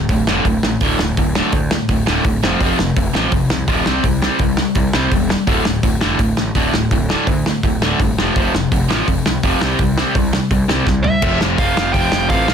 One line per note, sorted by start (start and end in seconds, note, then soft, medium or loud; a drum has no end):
0.09 0.21 D1 loud
0.09 0.26 D2 medium
0.09 0.26 A2 medium
0.09 kick loud
0.09 open hi-hat medium
0.27 0.39 F1 medium
0.27 0.45 D2 medium
0.27 0.45 A2 medium
0.27 0.45 D3 loud
0.27 snare loud
0.45 0.56 D1 medium
0.45 0.62 D2 medium
0.45 0.63 A2 medium
0.45 kick medium
0.45 open hi-hat soft
0.63 0.75 A1 medium
0.63 0.80 D2 medium
0.63 0.80 A2 medium
0.63 snare loud
0.81 0.92 D1 loud
0.81 0.99 D2 medium
0.81 0.99 A2 loud
0.81 0.99 D3 loud
0.81 kick loud
0.81 open hi-hat medium
0.99 1.11 D1 medium
0.99 1.16 D2 medium
0.99 1.16 A2 medium
0.99 snare loud
1.17 1.40 D1 loud
1.17 1.34 D2 medium
1.17 1.34 A2 medium
1.17 kick loud
1.17 open hi-hat medium
1.35 1.53 D2 medium
1.35 1.53 A2 loud
1.35 1.53 D3 loud
1.35 snare loud
1.52 1.75 D2 medium
1.52 1.70 D2 medium
1.52 1.70 A2 medium
1.52 kick loud
1.52 open hi-hat medium
1.71 1.88 D2 medium
1.71 1.88 A2 medium
1.71 snare loud
1.89 2.00 D1 medium
1.89 2.06 D2 medium
1.89 2.06 A2 medium
1.89 kick loud
1.89 open hi-hat medium
2.07 2.18 D1 medium
2.07 2.24 D2 medium
2.07 2.25 A2 medium
2.07 2.25 D3 loud
2.07 snare loud
2.25 2.36 D1 loud
2.25 2.41 D2 medium
2.25 2.42 A2 medium
2.25 kick loud
2.25 open hi-hat medium
2.43 2.54 F1 loud
2.43 2.60 F2 medium
2.43 2.60 C3 medium
2.43 2.60 F3 loud
2.43 snare loud
2.61 2.72 F1 loud
2.61 2.78 F2 medium
2.61 2.78 C3 loud
2.61 2.78 F3 loud
2.61 kick loud
2.61 open hi-hat medium
2.79 2.90 F1 medium
2.79 2.95 F2 medium
2.79 2.95 C3 medium
2.79 snare loud
2.96 3.08 F1 medium
2.96 3.13 F2 medium
2.96 3.13 C3 medium
2.96 kick loud
2.96 open hi-hat medium
3.15 3.26 A1 medium
3.15 3.32 F2 medium
3.15 3.32 C3 loud
3.15 3.32 F3 loud
3.15 snare loud
3.32 3.44 F1 medium
3.32 3.49 F2 medium
3.32 3.49 C3 medium
3.32 kick loud
3.32 open hi-hat soft
3.50 3.62 C2 medium
3.50 3.67 F2 medium
3.50 3.67 C3 medium
3.50 snare loud
3.68 3.79 D1 medium
3.68 3.85 F2 medium
3.68 3.86 C3 medium
3.68 3.86 F3 loud
3.68 kick loud
3.68 open hi-hat medium
3.86 3.98 C2 medium
3.86 4.04 C3 medium
3.86 4.04 G3 medium
3.86 4.04 C4 medium
3.86 snare loud
4.04 4.26 C2 medium
4.04 4.21 C3 medium
4.04 4.21 G3 medium
4.04 kick loud
4.04 open hi-hat medium
4.22 4.39 C3 medium
4.22 4.39 G3 loud
4.22 4.39 C4 loud
4.22 snare loud
4.39 4.62 C2 medium
4.39 4.56 C3 medium
4.39 4.57 G3 medium
4.39 kick loud
4.39 open hi-hat medium
4.57 4.75 C3 medium
4.57 4.75 G3 medium
4.57 snare loud
4.75 4.87 C2 medium
4.75 4.92 C3 medium
4.75 4.93 G3 medium
4.75 kick medium
4.75 open hi-hat medium
4.93 5.06 C2 medium
4.93 5.11 C3 medium
4.93 5.11 G3 medium
4.93 5.11 C4 loud
4.93 snare loud
5.12 5.34 E1 medium
5.12 5.28 C3 medium
5.12 5.28 G3 medium
5.12 kick loud
5.12 open hi-hat medium
5.29 5.46 C3 medium
5.29 5.46 G3 medium
5.29 snare medium
5.47 5.59 D1 medium
5.47 5.64 D2 medium
5.47 5.65 A2 medium
5.47 5.65 D3 medium
5.47 kick loud
5.47 open hi-hat medium
5.65 5.77 D1 medium
5.65 5.82 D2 medium
5.65 5.82 A2 medium
5.65 snare medium
5.83 5.95 D1 medium
5.83 5.99 D2 medium
5.83 6.00 A2 medium
5.83 kick loud
5.83 open hi-hat medium
6.01 6.13 F1 medium
6.01 6.18 D2 medium
6.01 6.18 A2 medium
6.01 6.19 D3 loud
6.01 snare loud
6.19 6.31 D1 medium
6.19 6.36 D2 medium
6.19 6.36 A2 medium
6.19 kick medium
6.19 open hi-hat medium
6.37 6.49 A1 medium
6.37 6.54 D2 medium
6.37 6.54 A2 medium
6.37 snare loud
6.55 6.67 D1 loud
6.55 6.73 D2 medium
6.55 6.73 A2 medium
6.55 6.73 D3 medium
6.55 kick loud
6.55 open hi-hat medium
6.73 6.84 D1 medium
6.73 6.90 D2 medium
6.73 6.90 A2 medium
6.73 snare medium
6.91 7.14 D1 loud
6.91 7.08 D2 medium
6.91 7.08 A2 medium
6.91 kick loud
6.91 open hi-hat medium
7.09 7.26 D2 medium
7.09 7.27 A2 medium
7.09 7.27 D3 loud
7.09 snare loud
7.27 7.50 D2 loud
7.27 7.44 D2 medium
7.27 7.44 A2 medium
7.27 kick loud
7.27 open hi-hat medium
7.46 7.62 D2 medium
7.46 7.62 A2 medium
7.46 snare loud
7.63 7.75 D1 medium
7.63 7.80 D2 medium
7.63 7.80 A2 medium
7.63 kick loud
7.63 open hi-hat soft
7.81 7.92 D1 medium
7.81 7.99 D2 medium
7.81 7.99 A2 medium
7.81 7.99 D3 loud
7.81 snare loud
7.99 8.11 G1 medium
7.99 8.16 D2 medium
7.99 8.17 A2 medium
7.99 kick loud
7.99 open hi-hat medium
8.17 8.28 F1 medium
8.17 8.35 F2 medium
8.17 8.35 C3 medium
8.17 8.35 F3 medium
8.17 snare loud
8.36 8.47 F1 medium
8.36 8.53 F2 medium
8.36 8.53 C3 medium
8.36 8.53 F3 loud
8.36 kick loud
8.36 open hi-hat soft
8.54 8.65 F1 medium
8.54 8.70 F2 medium
8.54 8.70 C3 medium
8.54 snare loud
8.72 8.83 F1 medium
8.72 8.88 F2 medium
8.72 8.88 C3 medium
8.72 kick loud
8.72 open hi-hat medium
8.89 9.00 A1 medium
8.89 9.07 F2 loud
8.89 9.07 C3 loud
8.89 9.07 F3 loud
8.89 snare loud
9.08 9.19 F1 medium
9.08 9.24 F2 medium
9.08 9.24 C3 medium
9.08 kick loud
9.08 open hi-hat medium
9.26 9.37 C2 medium
9.26 9.42 F2 medium
9.26 9.42 C3 medium
9.26 snare loud
9.43 9.55 F1 loud
9.43 9.60 F2 medium
9.43 9.60 C3 medium
9.43 9.61 F3 loud
9.43 kick loud
9.43 open hi-hat medium
9.61 9.72 C2 loud
9.61 9.78 C3 medium
9.61 9.78 G3 medium
9.61 9.78 C4 loud
9.61 snare loud
9.79 10.02 C2 medium
9.79 9.96 C3 medium
9.79 9.96 G3 medium
9.79 kick loud
9.79 open hi-hat medium
9.98 10.14 C3 loud
9.98 10.14 G3 medium
9.98 10.14 C4 loud
9.98 snare medium
10.15 10.37 C2 loud
10.15 10.31 C3 medium
10.15 10.31 G3 medium
10.15 kick loud
10.15 open hi-hat medium
10.33 10.49 C3 medium
10.33 10.49 G3 medium
10.33 snare loud
10.51 10.62 C2 medium
10.51 10.67 C3 medium
10.51 10.68 G3 medium
10.51 kick loud
10.51 open hi-hat medium
10.68 10.80 C2 medium
10.68 10.85 C3 loud
10.68 10.86 G3 loud
10.68 10.86 C4 medium
10.68 snare loud
10.87 11.09 C2 medium
10.87 11.03 C3 medium
10.87 11.03 G3 medium
10.87 kick loud
10.87 snare medium
11.04 11.20 C3 medium
11.04 11.21 G3 medium
11.04 11.38 E5 loud
11.04 floor tom medium
11.22 11.38 F1 medium
11.22 11.57 F2 medium
11.22 11.57 C3 loud
11.22 11.58 F3 loud
11.22 kick loud
11.22 crash loud
11.41 11.57 F1 medium
11.41 snare medium
11.58 11.74 F1 medium
11.58 11.75 F2 medium
11.58 11.75 C3 medium
11.58 11.76 F3 medium
11.58 11.92 F5 medium
11.58 kick loud
11.58 open hi-hat medium
11.76 11.93 F1 medium
11.76 11.93 F2 medium
11.76 11.93 C3 medium
11.76 11.93 F3 medium
11.76 snare loud
11.93 12.10 F1 medium
11.93 12.30 F2 medium
11.93 12.30 C3 medium
11.93 12.31 F3 medium
11.93 12.27 G5 loud
11.93 kick medium
11.93 open hi-hat medium
12.12 12.28 F1 loud
12.12 snare loud
12.30 12.46 A1 loud
12.30 12.47 F2 medium
12.30 12.48 C3 medium
12.30 12.47 F3 medium
12.30 12.54 F5 loud
12.30 kick loud
12.30 open hi-hat medium
12.48 12.54 A#1 medium
12.48 12.54 A#2 medium
12.48 12.54 F3 medium
12.48 12.54 A#3 loud
12.48 snare loud